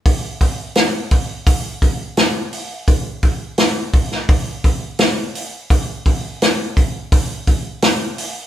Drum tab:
HH |o-o-o-o-o-o-o-o-|o-o-o-o-o-o-o-o-|o-o-o-o-o-o-o-o-|
SD |----o-------o---|----o--o----o---|----o-------o---|
BD |o-o---o-o-o-----|o-o---o-o-o-----|o-o---o-o-o-----|